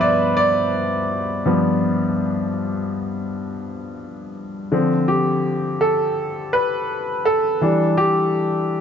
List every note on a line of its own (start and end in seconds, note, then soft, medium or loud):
0.00 1.45 G2 medium
0.00 1.43 B2 medium
0.00 1.46 F3 soft
0.00 1.46 B3 medium
0.00 4.74 B4 medium
0.00 4.73 C5 medium
0.00 0.37 D5 loud
0.00 4.74 E5 medium
0.37 3.95 D5 medium
1.45 4.31 G2 medium
1.45 4.32 F3 medium
1.45 4.32 B3 medium
4.72 7.58 D3 medium
4.72 7.58 F3 soft
4.72 7.58 C4 medium
5.08 5.83 G4 medium
5.81 6.55 A4 medium
6.53 7.28 B4 medium
7.25 8.00 A4 medium
7.61 8.11 E3 medium
7.61 8.11 G3 medium
7.61 8.11 D4 medium
7.97 8.81 G4 medium